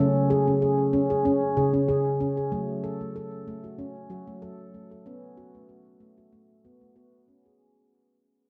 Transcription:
0.00 C#3 C#4
0.30 G#4
0.48 C#4
0.62 G#4
0.93 C#4
1.10 G#4
1.25 C#4
1.57 C#3 G#4
1.74 C#4
1.88 C#3 G#4
2.20 C#4
2.37 G#4
2.52 F#3 A3
2.84 A4
3.01 A3
3.16 A4
3.48 A3
3.64 F#4
3.79 C#4
4.10 F#3 F#4
4.27 A3
4.42 F#3 A4
4.74 A3
4.91 A4
5.06 B3 C#4
5.37 F#4
5.55 A3
5.69 F#4
6.00 A3
6.18 F#4
6.33 A3
6.65 B3 F#4
6.81 A3
6.96 B3 F#4
7.28 C#4
7.46 G#4

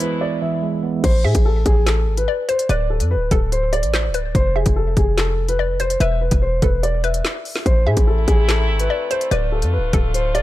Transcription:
Already playing: B2 E3 G#3 B3 E4
0.00 E4 B4, closed hi-hat
0.21 D5 E5
0.42 E3 E5
0.62 G#3
0.83 B3
1.04 A1 C5, kick, closed hi-hat, crash
1.24 A2 G#4 E5
1.35 A1, kick, closed hi-hat
1.45 A4
1.66 A1 G#4, kick, closed hi-hat
1.87 A4, snare, clap, closed hi-hat
2.07 G#1
2.17 B4, closed hi-hat
2.28 D5
2.49 C5, closed hi-hat
2.59 closed hi-hat
2.69 D1 B4 D5, closed hi-hat
2.90 A4
3.00 F2, closed hi-hat
3.11 B4
3.16 D1
3.31 D1 A4, kick, closed hi-hat
3.52 C5, closed hi-hat
3.73 D5, closed hi-hat
3.83 A1, closed hi-hat
3.94 C5, snare, clap
4.09 D1
4.14 B4, closed hi-hat
4.35 F1 C5, kick, closed hi-hat
4.56 G#4 E5
4.66 F1, kick, closed hi-hat
4.76 A4
4.97 F1 G#4, kick, closed hi-hat
5.18 A4, snare, clap, closed hi-hat
5.48 B4, closed hi-hat
5.59 D5
5.80 C5, closed hi-hat
5.90 closed hi-hat
6.00 E1 B4 E5, closed hi-hat
6.21 B4
6.31 E1, kick, closed hi-hat
6.42 C5
6.62 E1 A4 B4, kick, closed hi-hat
6.83 D5, closed hi-hat
7.04 B4 E5, closed hi-hat
7.14 closed hi-hat
7.25 snare, clap
7.45 open hi-hat
7.56 snare
7.66 A1 C3 A3 E4 C5, kick, closed hi-hat
7.87 A2 G#4 E5
7.97 A1, kick, closed hi-hat
8.07 A4
8.28 A1 G#4, kick, closed hi-hat
8.49 A4, snare, clap, closed hi-hat
8.69 G#1
8.79 B4, closed hi-hat
8.90 D5
9.11 C5, closed hi-hat
9.21 closed hi-hat
9.31 D1 D3 F4 B4 D5, closed hi-hat
9.52 A4
9.62 F2, closed hi-hat
9.73 B4
9.78 D1
9.93 D1 A4, kick, closed hi-hat
10.14 C5, closed hi-hat
10.35 D5, closed hi-hat

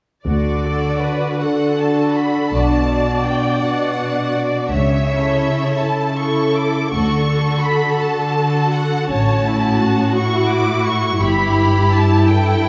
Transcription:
0.26 D2 D3 F#4 D5
0.65 D4 F#4 A4
1.03 B4
1.40 D3 A4 F#5
1.80 D4 F#4 A5
2.15 B5
2.52 B1 B2 D4 F#4 D5 A5
2.89 D4 F#4
3.26 G5
3.62 B2 F#5
3.99 D4 F#4
4.35 D5
4.71 C#2 C#3 C#5 E5
5.10 E4 A4
5.81 C#3 A4 A5
6.19 E4 A4 C#6
6.55 D6
6.90 D2 D3 F#4 A4 C#6
7.30 F#4 A4
7.63 B5
8.00 D3 A5
8.39 F#4 A4
8.74 F#5
9.09 A1 A2 C#4 F#4 C#5 A5
9.46 E4
9.81 F#4
10.16 E4 C#6
10.49 D6
10.84 C#6
11.20 G1 G2 E4 G4 B5
11.94 A5
12.27 E4 A4 G5
12.63 B4

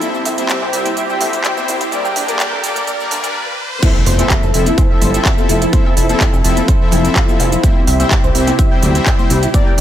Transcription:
Already playing: E4, riser
0.01 C3 G3 C4 E4 G4 C5 E5, closed hi-hat, high conga, shaker
0.14 high woodblock, shaker
0.25 C2 E5, open hi-hat, shaker
0.38 G3 C4 E4 C5 E5, closed hi-hat, high conga, shaker
0.49 G5, clap, closed hi-hat, shaker
0.62 C2 C5, high woodblock
0.73 C2 G3 C4 E4 C5 E5, open hi-hat, shaker
0.86 E4, closed hi-hat, high conga, shaker
0.96 E5, closed hi-hat, high woodblock, shaker
1.09 G3 C4 E4 C5 E5 G5, shaker
1.20 D2 E5, open hi-hat, high conga, low conga, shaker
1.33 closed hi-hat, shaker
1.44 G5, clap, closed hi-hat, high woodblock, shaker
1.57 G3 C4 E4 C5 E5, high conga, shaker
1.68 C2 E4, open hi-hat, shaker
1.81 E4, closed hi-hat, shaker
1.91 G3 A#3 D4 G4 A#4 D5, closed hi-hat, high conga, high woodblock, shaker
2.05 G5, shaker
2.16 G1 D4, open hi-hat, shaker
2.28 G3 A#3 D4 A#4 D5, closed hi-hat, high conga, low conga, high woodblock, shaker
2.40 clap, closed hi-hat, shaker
2.52 G1
2.63 G1 G3 A#3 D4 A#4 D5, open hi-hat, shaker
2.75 closed hi-hat, high conga, high woodblock, shaker
2.87 D5, closed hi-hat, shaker
3.00 G3 A#3 D4 A#4 D5, shaker
3.11 D2 D4, open hi-hat, high conga, shaker
3.23 G3 A#3 D4 A#4 D5, closed hi-hat, high woodblock, shaker
3.82 F3 C4 E4 A4 E5, kick, closed hi-hat, crash, impact, high conga, shaker
3.94 high woodblock
4.06 F1 C5, open hi-hat, shaker
4.19 F3 C4 E4 A4 C5 E5, closed hi-hat, high conga, high woodblock, shaker
4.30 E5, kick, clap, closed hi-hat, shaker
4.43 F1 A4, shaker
4.54 F1 F3 C4 E4 A4 E5, open hi-hat, high woodblock, shaker
4.66 E4, closed hi-hat, high conga, shaker
4.78 C5, kick, closed hi-hat, high woodblock, shaker
4.90 F3 C4 E4 A4 E5
5.02 G1 C5, open hi-hat, high conga, low conga, high woodblock, shaker
5.14 F3 C4 E4 A4 E5, closed hi-hat, shaker
5.25 E5, kick, clap, closed hi-hat, high woodblock, shaker
5.38 F3 C4 E4 A4 E5, high conga, shaker
5.49 F1 E4, open hi-hat, shaker
5.62 E4, closed hi-hat, high woodblock, shaker
5.73 F3 C4 E4 A4 C5 E5, kick, closed hi-hat, high conga, shaker
5.85 E5, high woodblock
5.97 F1 E4, open hi-hat, shaker
6.09 F3 C4 E4 A4 E5, closed hi-hat, high conga, high woodblock, shaker
6.20 kick, clap, closed hi-hat, shaker
6.33 F1, high woodblock, shaker
6.44 F1 F3 C4 E4 A4 E5, open hi-hat, shaker
6.57 closed hi-hat, high conga, low conga, shaker
6.68 C5, kick, closed hi-hat, high woodblock, shaker
6.81 F3 C4 E4 A4 E5
6.91 F1 E4, open hi-hat, high conga, low conga, high woodblock, shaker
7.05 F3 C4 E4 A4 E5, closed hi-hat, shaker
7.16 F5, kick, clap, closed hi-hat, high woodblock, shaker
7.28 F3 C4 E4 F4 A4 E5, high conga, shaker
7.40 F1 F4, open hi-hat, high woodblock, shaker
7.52 E4, closed hi-hat, low conga, shaker
7.63 C3 G3 C4 E4 G4 C5 E5, kick, closed hi-hat, high conga, shaker
7.75 high woodblock
7.87 C2 E5, open hi-hat, shaker
7.99 G3 C4 E4 C5 E5, closed hi-hat, high conga, high woodblock, shaker
8.11 G5, kick, clap, closed hi-hat, shaker
8.24 C2 C5, high woodblock, shaker
8.35 C2 G3 C4 E4 C5 E5, open hi-hat, shaker
8.47 E4, closed hi-hat, high conga, high woodblock, shaker
8.59 E5, kick, closed hi-hat, shaker
8.71 G3 C4 E4 C5 E5 G5
8.82 D2 E5, open hi-hat, high conga, low conga, high woodblock, shaker
8.95 G3 C4 E4 C5 E5, closed hi-hat, shaker
9.06 G5, kick, clap, closed hi-hat, high woodblock, shaker
9.19 G3 C4 E4 C5 E5, high conga, shaker
9.30 C2 E4, open hi-hat, high woodblock, shaker
9.43 E4, closed hi-hat, shaker
9.54 G3 A#3 D4 A#4 D5, kick, closed hi-hat, high conga, high woodblock, shaker
9.67 G5

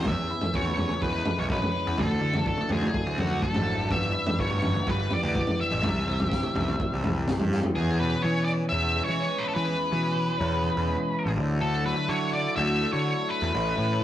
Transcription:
Already playing: E3 E4
0.05 E2 B3 C#4 G#4 E5, kick, floor tom
0.31 E4
0.41 floor tom
0.54 E2 C#4 C#5, kick
0.65 mid tom
0.77 E3, floor tom
0.89 mid tom
1.02 E2 G#3 B4, kick
1.25 E3, floor tom
1.38 B1 C#5
1.50 C#4 B4, kick
1.62 floor tom
1.74 G#3
1.87 E2
1.98 D2 D3 A3 D4 F#4 A4, kick, floor tom
2.21 D2 E4
2.34 floor tom
2.46 D4 A4, kick
2.58 mid tom
2.69 D2 F#3 G#4, floor tom
2.82 mid tom
2.93 A3, kick
3.06 D2
3.17 F#3 F#4, floor tom
3.42 D4 A4, kick
3.55 G#1, floor tom
3.66 A3
3.91 G1 G2 E3 B3 G4 E5, kick, floor tom
4.14 E4
4.27 floor tom
4.39 G1 B3 C#5, kick
4.50 mid tom
4.62 E3, floor tom
4.75 mid tom
4.86 G1 G3 B4, kick
5.10 E3 D5, floor tom
5.23 D2
5.35 B3, kick
5.47 floor tom
5.60 G3 E5
5.71 A1
5.83 C2 C3 E3 G3 C4, kick, floor tom
6.06 C2 E4
6.20 floor tom
6.29 C4, kick, snare
6.43 mid tom
6.55 C2 E3, floor tom
6.68 mid tom
6.78 G3, kick, mid tom
6.93 C2
7.03 E3, floor tom
7.27 C4, kick, snare, mid tom
7.40 G2, floor tom
7.51 G3, snare
7.63 floor tom
7.74 E2 E3 B3 C#4 G#4
7.99 B2 B4
8.22 E3 C#5
8.45 C#4 D5
8.69 E2 E3 E5
8.96 G#3
9.04 C#5
9.09 E3
9.20 C#4
9.38 B4
9.44 E4
9.48 A4
9.55 E3 B4
9.67 E2
9.92 B2 E3
10.15 E3
10.38 E2 C#4
10.62 E3
10.77 E2
10.87 G#3
11.11 C#4
11.26 A1
11.35 D2 D3 F#3 D4 E4 A4
11.60 D3 A4
11.85 F#3 B4
12.09 D3 F#3 C#5
12.33 D4 D5
12.56 D2 F#3 E5
12.81 A3
12.92 D3 C#5
13.05 D4
13.29 E4 B4
13.42 E2
13.53 A1 A2 A3 C#4 B4
13.76 A2 E3
14.00 E3

